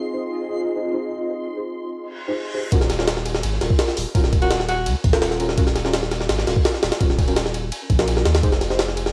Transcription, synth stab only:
0.13 0.22 D#4 medium
0.13 0.22 G4 medium
0.13 0.22 G#4 medium
0.13 0.22 C5 medium
0.76 0.81 D#4 medium
0.76 0.81 G4 medium
0.76 0.81 G#4 medium
0.76 0.81 C5 medium
0.94 0.99 D#4 medium
0.94 0.99 G4 medium
0.94 0.99 G#4 medium
0.94 0.99 C5 medium
1.29 1.35 D#4 medium
1.29 1.35 G4 medium
1.29 1.35 G#4 medium
1.29 1.35 C5 medium
1.56 1.65 D#4 medium
1.56 1.65 G4 medium
1.56 1.65 G#4 medium
1.56 1.65 C5 medium
2.28 2.52 D#4 loud
2.28 2.52 G4 medium
2.28 2.52 G#4 medium
2.28 2.52 C5 loud
2.54 2.64 D#4 medium
2.54 2.64 G4 medium
2.54 2.64 G#4 medium
2.54 2.64 C5 loud
2.72 2.78 C#4 loud
2.72 2.78 F4 medium
2.72 2.78 F#4 medium
2.72 2.78 A#4 loud
2.99 3.08 C#4 medium
2.99 3.08 F4 medium
2.99 3.08 F#4 medium
2.99 3.08 A#4 loud
3.61 3.67 C#4 medium
3.61 3.67 F4 medium
3.61 3.67 F#4 medium
3.61 3.67 A#4 medium
3.79 3.85 C#4 medium
3.79 3.85 F4 medium
3.79 3.85 F#4 medium
3.79 3.85 A#4 medium
4.15 4.21 C#4 medium
4.15 4.21 F4 medium
4.15 4.21 F#4 medium
4.15 4.21 A#4 medium
4.42 4.51 C#4 medium
4.42 4.51 F4 medium
4.42 4.51 F#4 medium
4.42 4.51 A#4 loud
5.13 5.38 C#4 loud
5.13 5.38 F4 medium
5.13 5.38 F#4 medium
5.13 5.38 A#4 loud
5.40 5.49 C#4 loud
5.40 5.49 F4 medium
5.40 5.49 F#4 medium
5.40 5.49 A#4 loud
5.58 5.64 C#4 loud
5.58 5.64 F4 medium
5.58 5.64 F#4 medium
5.58 5.64 A#4 loud
5.85 5.94 C#4 medium
5.85 5.94 F4 medium
5.85 5.94 F#4 medium
5.85 5.94 A#4 medium
6.47 6.53 C#4 medium
6.47 6.53 F4 medium
6.47 6.53 F#4 medium
6.47 6.53 A#4 medium
6.65 6.71 C#4 medium
6.65 6.71 F4 medium
6.65 6.71 F#4 medium
6.65 6.71 A#4 loud
7.01 7.06 C#4 medium
7.01 7.07 F4 medium
7.01 7.06 F#4 medium
7.01 7.06 A#4 medium
7.28 7.37 C#4 medium
7.28 7.36 F4 medium
7.28 7.37 F#4 medium
7.28 7.37 A#4 medium
7.99 8.08 C#4 medium
7.99 8.08 F4 medium
7.99 8.08 F#4 medium
7.99 8.08 A#4 loud
8.17 8.22 C#4 medium
8.17 8.22 F4 medium
8.17 8.22 F#4 medium
8.17 8.22 A#4 medium
8.43 8.49 D#4 loud
8.43 8.49 G4 medium
8.43 8.49 G#4 medium
8.43 8.49 C5 loud
8.70 8.79 D#4 medium
8.70 8.79 G4 medium
8.70 8.79 G#4 medium
8.70 8.79 C5 medium

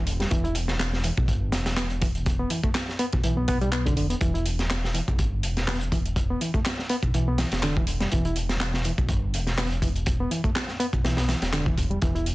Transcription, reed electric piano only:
0.20 0.28 G3 medium
0.31 0.44 E3 medium
0.44 0.55 E4 medium
1.04 1.10 E3 medium
1.77 1.87 B3 medium
2.01 2.07 E3 medium
2.39 2.49 B3 medium
2.50 2.60 E3 medium
2.64 2.69 A3 medium
2.99 3.05 B3 loud
3.24 3.36 E3 medium
3.37 3.47 B3 medium
3.48 3.57 B3 loud
3.61 3.69 G3 loud
3.72 3.85 B3 medium
3.86 3.94 D3 loud
3.96 4.06 D3 medium
4.10 4.15 B3 medium
4.21 4.34 E3 medium
4.34 4.45 E4 medium
4.94 5.00 E3 medium
5.68 5.77 B3 medium
5.92 5.98 E3 medium
6.30 6.40 B3 medium
6.41 6.50 E3 medium
6.54 6.59 A3 medium
6.90 6.95 B3 loud
7.15 7.27 E3 medium
7.28 7.38 B3 medium
7.39 7.48 E3 medium
7.63 7.75 D3 loud
7.77 7.84 E3 medium
8.01 8.08 G3 medium
8.12 8.24 E3 medium
8.25 8.36 E4 medium
8.85 8.91 E3 medium
9.58 9.67 B3 medium
9.82 9.88 E3 medium
10.20 10.30 B3 medium
10.31 10.40 E3 medium
10.44 10.49 A3 medium
10.80 10.86 B3 loud
11.04 11.17 E3 medium
11.18 11.28 B3 medium
11.28 11.38 E3 medium
11.53 11.65 D3 loud
11.66 11.74 E3 medium
11.90 11.98 G3 medium
12.02 12.15 E3 medium
12.15 12.26 E4 medium

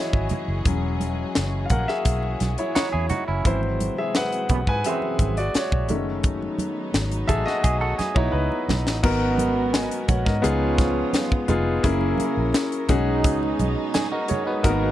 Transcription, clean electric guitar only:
2.75 2.92 D#4 medium
2.75 2.92 F#4 medium
2.93 3.09 E4 medium
2.93 3.09 G#4 medium
3.10 3.27 D#4 medium
3.10 3.26 F#4 medium
3.28 3.61 C#4 medium
3.28 3.61 E4 medium
7.29 7.62 F#4 soft
7.29 7.62 A4 medium
7.64 7.81 G#4 medium
7.81 7.98 F#4 medium
7.81 7.98 A4 medium
7.98 8.15 G#4 medium
8.16 9.00 B3 medium
8.16 9.00 D#4 medium
13.94 14.11 G#4 medium
14.12 14.46 D#4 medium
14.12 14.45 F#4 medium
14.47 14.81 B3 medium
14.47 14.80 D#4 medium

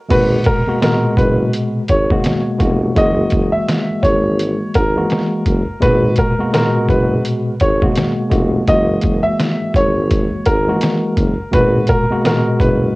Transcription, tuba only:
0.11 0.38 G#1 loud
1.17 1.45 F#1 medium
1.90 2.17 G#1 medium
2.60 2.88 F1 medium
2.97 3.24 F#1 loud
3.33 3.49 F#1 medium
3.90 3.95 G#1 soft
4.03 4.58 G#1 loud
4.75 5.03 G#1 medium
5.46 5.63 F#1 medium
5.82 6.10 G#1 medium
6.89 7.17 F#1 medium
7.61 7.88 G#1 medium
8.32 8.59 F1 loud
8.68 8.96 F#1 loud
9.04 9.20 F#1 medium
9.61 9.67 G#1 soft
9.75 10.30 G#1 medium
10.47 10.74 G#1 medium
11.18 11.34 F#1 medium
11.54 11.81 G#1 medium
12.60 12.88 F#1 medium

